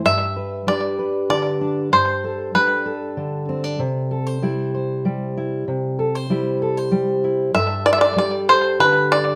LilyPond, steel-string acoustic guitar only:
\new Staff \with { instrumentName = "Steel-string acoustic guitar" } { \time 3/4 \key g \major \tempo 4 = 96 << { r8 b'8 d'8 b'4 d'8 | r8 a'8 d'8 a'4 c'16 d'16 | r8 a'16 c''16 e'8 c''4 e'8 | r8 a'16 c''16 e'8 a'16 c''8. e'8 |
a'4. a'4. | } \\ { g,4 g4 d4 | g,4 g4 d4 | c4 g4 g4 | c4 g4 g4 |
g,4 g4 d4 | } >> }